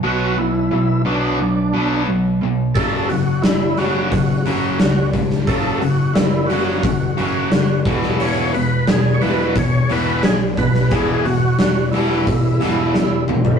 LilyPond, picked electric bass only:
\new Staff \with { instrumentName = "Picked electric bass" } { \clef bass \time 4/4 \key e \mixolydian \tempo 4 = 88 b,,4 b,,8 b,,8 b,,8 b,,8 b,,8 b,,8 | fis,,8 fis,,8 fis,,8 fis,,8 fis,8 fis,,8 cis,8 cis,8 | fis,,4 fis,,8 fis,,8 fis,,8 fis,,8 fis,,8 e,,8 | e,,8 e,,8 e,,8 e,,8 e,8 e,,8 b,,8 b,,8 |
e,,4 e,,8 e,,8 e,,8 e,,8 e,,8 gis,,8 | }